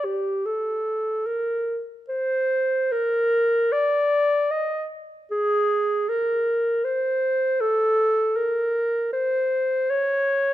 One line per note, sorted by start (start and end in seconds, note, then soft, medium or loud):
0.05 0.47 G4 medium
0.46 1.28 A4 medium
1.26 1.82 A#4 medium
2.09 2.93 C5 medium
2.92 3.74 A#4 medium
3.72 4.53 D5 medium
4.51 4.92 D#5 medium
5.31 6.10 G#4 medium
6.09 6.86 A#4 medium
6.85 7.62 C5 medium
7.61 8.38 A4 medium
8.36 9.12 A#4 medium
9.13 9.92 C5 medium
9.90 10.54 C#5 medium